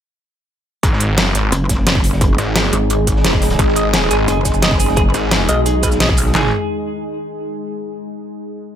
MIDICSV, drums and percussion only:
0, 0, Header, 1, 2, 480
1, 0, Start_track
1, 0, Key_signature, 5, "minor"
1, 0, Tempo, 344828
1, 1158, Time_signature, 4, 2, 24, 8
1, 12187, End_track
2, 0, Start_track
2, 0, Title_t, "Drums"
2, 1158, Note_on_c, 9, 36, 120
2, 1159, Note_on_c, 9, 42, 84
2, 1164, Note_off_c, 9, 42, 0
2, 1164, Note_on_c, 9, 42, 100
2, 1295, Note_on_c, 9, 38, 56
2, 1297, Note_off_c, 9, 36, 0
2, 1303, Note_off_c, 9, 42, 0
2, 1392, Note_on_c, 9, 42, 70
2, 1399, Note_off_c, 9, 42, 0
2, 1399, Note_on_c, 9, 42, 95
2, 1434, Note_off_c, 9, 38, 0
2, 1538, Note_off_c, 9, 42, 0
2, 1633, Note_on_c, 9, 42, 88
2, 1639, Note_off_c, 9, 42, 0
2, 1639, Note_on_c, 9, 38, 122
2, 1639, Note_on_c, 9, 42, 87
2, 1778, Note_off_c, 9, 38, 0
2, 1778, Note_off_c, 9, 42, 0
2, 1879, Note_on_c, 9, 42, 98
2, 1883, Note_on_c, 9, 38, 53
2, 1885, Note_off_c, 9, 42, 0
2, 1885, Note_on_c, 9, 42, 74
2, 2023, Note_off_c, 9, 38, 0
2, 2024, Note_off_c, 9, 42, 0
2, 2118, Note_on_c, 9, 42, 84
2, 2125, Note_off_c, 9, 42, 0
2, 2125, Note_on_c, 9, 42, 85
2, 2264, Note_off_c, 9, 42, 0
2, 2358, Note_on_c, 9, 36, 59
2, 2359, Note_on_c, 9, 42, 94
2, 2365, Note_off_c, 9, 42, 0
2, 2365, Note_on_c, 9, 42, 69
2, 2366, Note_on_c, 9, 38, 51
2, 2497, Note_off_c, 9, 36, 0
2, 2504, Note_off_c, 9, 42, 0
2, 2505, Note_off_c, 9, 38, 0
2, 2598, Note_on_c, 9, 38, 115
2, 2598, Note_on_c, 9, 42, 82
2, 2599, Note_off_c, 9, 38, 0
2, 2599, Note_off_c, 9, 42, 0
2, 2599, Note_on_c, 9, 38, 111
2, 2599, Note_on_c, 9, 42, 90
2, 2718, Note_on_c, 9, 36, 110
2, 2738, Note_off_c, 9, 38, 0
2, 2738, Note_off_c, 9, 42, 0
2, 2838, Note_on_c, 9, 46, 77
2, 2845, Note_on_c, 9, 42, 68
2, 2857, Note_off_c, 9, 36, 0
2, 2961, Note_on_c, 9, 38, 48
2, 2977, Note_off_c, 9, 46, 0
2, 2985, Note_off_c, 9, 42, 0
2, 3078, Note_on_c, 9, 36, 127
2, 3078, Note_on_c, 9, 42, 83
2, 3086, Note_off_c, 9, 42, 0
2, 3086, Note_on_c, 9, 42, 89
2, 3101, Note_off_c, 9, 38, 0
2, 3217, Note_off_c, 9, 36, 0
2, 3225, Note_off_c, 9, 42, 0
2, 3317, Note_on_c, 9, 42, 68
2, 3318, Note_off_c, 9, 42, 0
2, 3318, Note_on_c, 9, 42, 99
2, 3330, Note_on_c, 9, 38, 45
2, 3457, Note_off_c, 9, 42, 0
2, 3469, Note_off_c, 9, 38, 0
2, 3558, Note_on_c, 9, 38, 127
2, 3558, Note_on_c, 9, 42, 89
2, 3561, Note_off_c, 9, 42, 0
2, 3561, Note_on_c, 9, 42, 85
2, 3568, Note_off_c, 9, 38, 0
2, 3568, Note_on_c, 9, 38, 121
2, 3687, Note_off_c, 9, 38, 0
2, 3687, Note_on_c, 9, 38, 55
2, 3700, Note_off_c, 9, 42, 0
2, 3798, Note_on_c, 9, 42, 97
2, 3826, Note_off_c, 9, 38, 0
2, 3937, Note_off_c, 9, 42, 0
2, 4037, Note_on_c, 9, 42, 84
2, 4038, Note_off_c, 9, 42, 0
2, 4038, Note_on_c, 9, 42, 87
2, 4177, Note_off_c, 9, 42, 0
2, 4276, Note_on_c, 9, 42, 68
2, 4277, Note_off_c, 9, 42, 0
2, 4277, Note_on_c, 9, 42, 98
2, 4278, Note_on_c, 9, 36, 61
2, 4403, Note_on_c, 9, 38, 40
2, 4417, Note_off_c, 9, 36, 0
2, 4417, Note_off_c, 9, 42, 0
2, 4518, Note_off_c, 9, 38, 0
2, 4518, Note_on_c, 9, 38, 122
2, 4518, Note_on_c, 9, 42, 79
2, 4524, Note_off_c, 9, 38, 0
2, 4524, Note_on_c, 9, 38, 111
2, 4638, Note_on_c, 9, 36, 109
2, 4657, Note_off_c, 9, 42, 0
2, 4663, Note_off_c, 9, 38, 0
2, 4754, Note_on_c, 9, 38, 108
2, 4758, Note_on_c, 9, 46, 73
2, 4768, Note_on_c, 9, 42, 71
2, 4777, Note_off_c, 9, 36, 0
2, 4874, Note_off_c, 9, 42, 0
2, 4874, Note_on_c, 9, 42, 80
2, 4886, Note_off_c, 9, 38, 0
2, 4886, Note_on_c, 9, 38, 108
2, 4897, Note_off_c, 9, 46, 0
2, 4994, Note_off_c, 9, 42, 0
2, 4994, Note_on_c, 9, 42, 94
2, 4998, Note_on_c, 9, 36, 127
2, 4999, Note_off_c, 9, 42, 0
2, 4999, Note_on_c, 9, 42, 85
2, 5025, Note_off_c, 9, 38, 0
2, 5125, Note_on_c, 9, 38, 60
2, 5137, Note_off_c, 9, 36, 0
2, 5138, Note_off_c, 9, 42, 0
2, 5234, Note_on_c, 9, 42, 65
2, 5239, Note_off_c, 9, 42, 0
2, 5239, Note_on_c, 9, 42, 98
2, 5239, Note_on_c, 9, 82, 59
2, 5265, Note_off_c, 9, 38, 0
2, 5378, Note_off_c, 9, 42, 0
2, 5378, Note_off_c, 9, 82, 0
2, 5475, Note_on_c, 9, 42, 92
2, 5477, Note_on_c, 9, 38, 127
2, 5478, Note_off_c, 9, 38, 0
2, 5478, Note_off_c, 9, 42, 0
2, 5478, Note_on_c, 9, 38, 127
2, 5478, Note_on_c, 9, 42, 86
2, 5617, Note_off_c, 9, 38, 0
2, 5617, Note_off_c, 9, 42, 0
2, 5715, Note_on_c, 9, 42, 62
2, 5716, Note_on_c, 9, 38, 54
2, 5719, Note_off_c, 9, 42, 0
2, 5719, Note_on_c, 9, 42, 99
2, 5719, Note_on_c, 9, 82, 60
2, 5855, Note_off_c, 9, 38, 0
2, 5858, Note_off_c, 9, 42, 0
2, 5858, Note_off_c, 9, 82, 0
2, 5959, Note_on_c, 9, 42, 79
2, 5959, Note_on_c, 9, 82, 27
2, 5962, Note_off_c, 9, 42, 0
2, 5962, Note_on_c, 9, 42, 97
2, 6098, Note_off_c, 9, 82, 0
2, 6101, Note_off_c, 9, 42, 0
2, 6193, Note_on_c, 9, 38, 51
2, 6198, Note_on_c, 9, 36, 62
2, 6198, Note_on_c, 9, 42, 95
2, 6198, Note_on_c, 9, 82, 60
2, 6207, Note_off_c, 9, 42, 0
2, 6207, Note_on_c, 9, 42, 72
2, 6318, Note_off_c, 9, 82, 0
2, 6318, Note_on_c, 9, 82, 28
2, 6332, Note_off_c, 9, 38, 0
2, 6337, Note_off_c, 9, 36, 0
2, 6346, Note_off_c, 9, 42, 0
2, 6434, Note_on_c, 9, 38, 111
2, 6438, Note_off_c, 9, 38, 0
2, 6438, Note_on_c, 9, 38, 127
2, 6438, Note_on_c, 9, 42, 83
2, 6445, Note_off_c, 9, 42, 0
2, 6445, Note_on_c, 9, 42, 84
2, 6458, Note_off_c, 9, 82, 0
2, 6558, Note_on_c, 9, 36, 112
2, 6578, Note_off_c, 9, 38, 0
2, 6584, Note_off_c, 9, 42, 0
2, 6678, Note_on_c, 9, 46, 77
2, 6678, Note_on_c, 9, 82, 58
2, 6685, Note_on_c, 9, 42, 69
2, 6697, Note_off_c, 9, 36, 0
2, 6797, Note_on_c, 9, 38, 47
2, 6818, Note_off_c, 9, 46, 0
2, 6818, Note_off_c, 9, 82, 0
2, 6824, Note_off_c, 9, 42, 0
2, 6909, Note_on_c, 9, 42, 84
2, 6918, Note_off_c, 9, 42, 0
2, 6918, Note_on_c, 9, 36, 127
2, 6918, Note_on_c, 9, 42, 84
2, 6936, Note_off_c, 9, 38, 0
2, 7057, Note_off_c, 9, 36, 0
2, 7057, Note_off_c, 9, 42, 0
2, 7158, Note_on_c, 9, 38, 50
2, 7158, Note_on_c, 9, 42, 90
2, 7158, Note_on_c, 9, 82, 57
2, 7162, Note_off_c, 9, 42, 0
2, 7162, Note_on_c, 9, 42, 67
2, 7297, Note_off_c, 9, 38, 0
2, 7297, Note_off_c, 9, 82, 0
2, 7301, Note_off_c, 9, 42, 0
2, 7395, Note_on_c, 9, 38, 121
2, 7396, Note_on_c, 9, 42, 87
2, 7398, Note_off_c, 9, 38, 0
2, 7398, Note_off_c, 9, 42, 0
2, 7398, Note_on_c, 9, 38, 127
2, 7398, Note_on_c, 9, 42, 79
2, 7518, Note_off_c, 9, 38, 0
2, 7518, Note_on_c, 9, 38, 52
2, 7537, Note_off_c, 9, 42, 0
2, 7637, Note_on_c, 9, 42, 92
2, 7637, Note_on_c, 9, 82, 58
2, 7645, Note_off_c, 9, 42, 0
2, 7645, Note_on_c, 9, 42, 68
2, 7658, Note_off_c, 9, 38, 0
2, 7777, Note_off_c, 9, 82, 0
2, 7784, Note_off_c, 9, 42, 0
2, 7878, Note_on_c, 9, 42, 93
2, 7878, Note_on_c, 9, 82, 27
2, 8017, Note_off_c, 9, 42, 0
2, 8017, Note_off_c, 9, 82, 0
2, 8113, Note_on_c, 9, 42, 64
2, 8117, Note_off_c, 9, 42, 0
2, 8117, Note_on_c, 9, 42, 90
2, 8117, Note_on_c, 9, 82, 58
2, 8118, Note_on_c, 9, 36, 65
2, 8237, Note_off_c, 9, 82, 0
2, 8237, Note_on_c, 9, 82, 28
2, 8241, Note_on_c, 9, 38, 35
2, 8256, Note_off_c, 9, 42, 0
2, 8257, Note_off_c, 9, 36, 0
2, 8357, Note_off_c, 9, 38, 0
2, 8357, Note_on_c, 9, 38, 127
2, 8357, Note_on_c, 9, 42, 78
2, 8359, Note_off_c, 9, 38, 0
2, 8359, Note_on_c, 9, 38, 125
2, 8364, Note_off_c, 9, 42, 0
2, 8364, Note_on_c, 9, 42, 99
2, 8376, Note_off_c, 9, 82, 0
2, 8478, Note_on_c, 9, 36, 114
2, 8498, Note_off_c, 9, 38, 0
2, 8503, Note_off_c, 9, 42, 0
2, 8586, Note_on_c, 9, 42, 67
2, 8597, Note_on_c, 9, 46, 82
2, 8597, Note_on_c, 9, 82, 57
2, 8617, Note_off_c, 9, 36, 0
2, 8712, Note_on_c, 9, 38, 41
2, 8725, Note_off_c, 9, 42, 0
2, 8736, Note_off_c, 9, 46, 0
2, 8736, Note_off_c, 9, 82, 0
2, 8838, Note_off_c, 9, 38, 0
2, 8838, Note_on_c, 9, 38, 109
2, 8838, Note_on_c, 9, 39, 91
2, 8838, Note_on_c, 9, 43, 103
2, 8977, Note_off_c, 9, 38, 0
2, 8977, Note_off_c, 9, 39, 0
2, 8977, Note_off_c, 9, 43, 0
2, 12187, End_track
0, 0, End_of_file